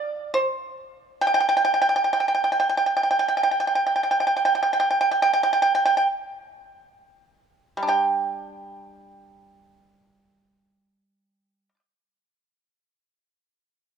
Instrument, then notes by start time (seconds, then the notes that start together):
pipa
Already playing: D5
0.34 C5
1.21 G5
1.27 G5
1.34 G5
1.40 G5
1.49 G5
1.57 G5
1.65 G5
1.74 G5
1.82 G5
1.89 G5
1.96 G5
2.04 G5
2.13 G5
2.20 G5
2.28 G5
2.35 G5
2.44 G5
2.52 G5
2.60 G5
2.69 G5
2.77 G5
2.86 G5
2.97 G5
3.03 G5
3.11 G5
3.19 G5
3.28 G5
3.37 G5
3.43 G5
3.51 G5
3.60 G5
3.67 G5
3.75 G5
3.87 G5
3.96 G5
4.03 G5
4.11 G5
4.20 G5
4.27 G5
4.37 G5
4.45 G5
4.55 G5
4.63 G5
4.73 G5
4.80 G5
4.91 G5
5.01 G5
5.11 G5
5.22 G5
5.33 G5
5.43 G5
5.53 G5
5.62 G5
5.75 G5
5.86 G5
5.97 G5
7.77 G3
7.83 D4
7.88 G4 G5